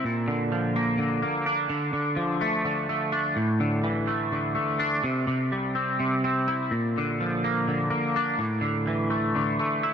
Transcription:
0.04 A#2
0.28 D3
0.52 F3
0.76 A#3
0.98 D3
1.22 A#3
1.46 D4
1.69 D3
1.93 D3
2.16 F3
2.41 A3
2.65 D3
2.89 A3
3.12 D4
3.36 A2
3.60 D3
3.83 E3
4.07 A3
4.32 D3
4.55 A3
4.79 D4
5.04 C3
5.27 C3
5.52 G3
5.75 C4
6.00 C3
6.24 C4
6.48 E4
6.71 A#2
6.98 D3
7.20 F3
7.44 A#3
7.68 D3
7.90 A#3
8.16 D4
8.38 A2
8.61 D3
8.87 E3
9.10 A3
9.36 D3
9.59 A3
9.83 E4

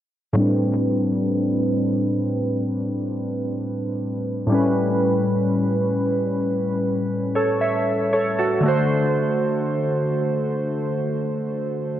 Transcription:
0.33 A2 G3 C4
0.39 D4 B4
4.47 A2 G3
4.52 C#4 B4
7.35 A4 C#5
7.61 C#5 E5
8.13 A4 C#5
8.39 F#4 A4
8.61 D3 A3
8.66 F#4 C5

